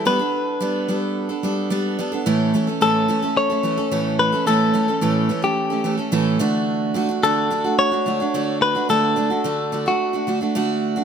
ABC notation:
X:1
M:4/4
L:1/16
Q:1/4=109
K:Amix
V:1 name="Clean electric guitar"
B12 z4 | z4 A4 c6 B2 | A6- A G4 z4 z | z4 A4 c6 B2 |
A6- A F4 z4 z |]
V:2 name="Steel-string acoustic guitar"
[G,B,DA] [B,DA]3 [G,B,DA]2 [G,B,DA]3 [B,DA] [G,B,DA]2 [G,B,DA]2 [G,B,DA] [B,DA] | [A,,E,A,CA]2 [E,A,CA] [A,CA] [A,,E,A,CA]2 [E,A,CA] [A,CA]2 [A,CA] [E,A,CA] [A,CA] [A,,E,A,CA]3 [A,CA] | [A,,E,A,CA]2 [E,A,CA] [A,CA] [A,,E,A,CA]2 [E,A,CA] [A,CA]2 [A,CA] [E,A,CA] [A,CA] [A,,E,A,CA]2 [D,A,DF]2- | [D,A,DF]2 [D,A,DF] [A,DF] [D,A,DF]2 [D,A,DF] [A,DF]2 [A,DF] [D,A,DF] [A,DF] [D,A,DF]3 [A,DF] |
[D,A,DF]2 [D,A,DF] [A,DF] [D,A,DF]2 [D,A,DF] [A,DF]2 [A,DF] [D,A,DF] [A,DF] [D,A,DF]3 [A,DF] |]